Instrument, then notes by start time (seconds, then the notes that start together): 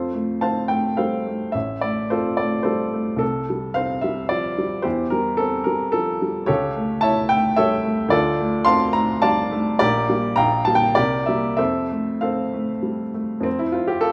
upright piano
Already playing: F2 F4 A4 C5
0.14 A3
0.41 C4 C5 F5 A5
0.68 A3 G5
0.97 G3 A4 C5 F5
1.27 A3
1.52 A1 E5
1.81 A3 D5
2.10 C4 F4 A4 C5
2.37 A3 D5
2.63 G3 F4 A4 C5
2.93 A3
3.16 C2 A4
3.50 G3
3.74 C4 C5 F5
4.01 G3 E5
4.29 F3 D5
4.58 G3
4.82 E2 E4 G4 C5
5.10 G3 A#4
5.37 C4 A4
5.64 G3 A#4
5.92 F3 A4
6.22 G3
6.46 C#2 G4 A4 C#5
6.76 A3
7.01 E4 C#5 E5 A5
7.29 A3 G5
7.56 G3 A4 C#5 E5
7.85 A3
8.08 D2 F4 A4 D5
8.40 A3
8.65 C4 F5 A5 C6
8.93 A3 A#5
9.22 G3 D5 F5 A5
9.51 A3
9.79 A#1 G4 A#4 D5
10.09 G3 A#3
10.36 A#1 F5 G5 A#5
10.65 G3 A#3 A5
10.75 G5
10.95 C2 G4 A#4 D5
11.26 G3 A#3 E5
11.57 F2 A4 C5 E5
11.91 A3
12.21 C4 A4 C5 F5
12.54 A3
12.83 G3
13.14 A3
13.40 F2 C4
13.59 E4
13.72 F4 C5
13.88 G4
14.01 A4 F5